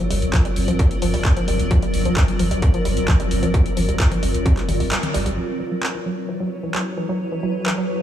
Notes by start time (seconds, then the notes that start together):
Already playing: F#3 C4 F4 A#4 D5
0.11 G1 G3, open hi-hat
0.22 G1, closed hi-hat
0.33 F3, kick, clap, closed hi-hat
0.45 G3, closed hi-hat
0.56 G1, open hi-hat
0.68 G1 F3, closed hi-hat
0.79 G3, kick, closed hi-hat
0.91 closed hi-hat
1.02 G1 F3, open hi-hat
1.14 G1 G3, open hi-hat
1.25 kick, clap, closed hi-hat
1.37 F3, closed hi-hat
1.48 G1 G3, open hi-hat
1.60 G1, closed hi-hat
1.71 F3, kick, closed hi-hat
1.82 G3, closed hi-hat
1.94 G1, open hi-hat
2.05 G1 F3, closed hi-hat
2.17 G3, kick, clap, closed hi-hat
2.28 closed hi-hat
2.39 G1 F3, open hi-hat
2.51 G1 G3, closed hi-hat
2.62 kick, closed hi-hat
2.74 F3, closed hi-hat
2.85 G1 G3, open hi-hat
2.97 G1, closed hi-hat
3.08 F3, kick, clap, closed hi-hat
3.20 G3, closed hi-hat
3.31 G1, open hi-hat
3.43 G1 F3, closed hi-hat
3.54 G3, kick, closed hi-hat
3.66 closed hi-hat
3.77 G1 F3, open hi-hat
3.89 G1 G3, closed hi-hat
4.00 kick, clap, closed hi-hat, mid tom
4.11 F3, closed hi-hat
4.23 G1 G3, open hi-hat
4.34 G1, closed hi-hat
4.46 F3, kick, closed hi-hat
4.57 G3, clap, closed hi-hat
4.68 G1 G3, open hi-hat, mid tom
4.80 G1 G3, open hi-hat
4.91 G3, clap, closed hi-hat
5.03 closed hi-hat, mid tom
5.14 G1 G3, open hi-hat
5.26 G1 G3, closed hi-hat
5.37 F#3
5.45 E4 B4
5.53 C#5
5.60 E3
5.72 F#3
5.83 A4, clap
5.95 E3
6.06 F#3
6.29 E3
6.40 F#3
6.63 E3
6.75 F#3, clap
6.97 E3
7.09 F#3
7.32 E3
7.43 F#3
7.66 E3, clap
7.78 F#3